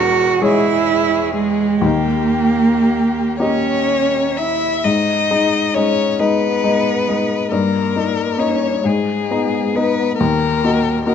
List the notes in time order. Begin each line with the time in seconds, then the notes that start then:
Already playing: E1 E2 F#4 A#4
0.41 G#3 E4 G#4 C#5
1.35 G#3
1.81 D#2 D#3 G4
1.86 A#3
3.39 A#3 C#4 G4 C#5 D#5
4.37 E4 E5
4.84 G#2 D#4 D#5
5.31 G#3 D#4 D#5
5.74 G#3 C#4 D#4 C#5 D#5
6.19 G#3 B3 D#4 B4 D#5
6.64 G#3 D#4 D#5
7.08 G#3 D#4 D#5
7.50 G2 A#3 A#4
7.96 A#3 D#4 D#5
8.37 A#3 C#4 D#4 C#5 D#5
8.84 G#2 G#3 G#4
9.31 B3 D#4 D#5
9.73 B3 D#4 B4 D#5
10.17 D#2 A#3 A#4
10.64 A#3 F#4 D#5
11.06 A#3 F#4 A#4 D#5